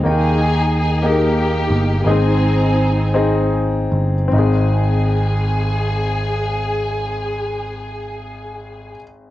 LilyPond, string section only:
\new Staff \with { instrumentName = "String section" } { \time 6/8 \key aes \major \tempo 4. = 48 <ees' aes'>4. <bes ees' g'>4. | <c' ees' aes'>2 r4 | aes'2.~ | aes'2. | }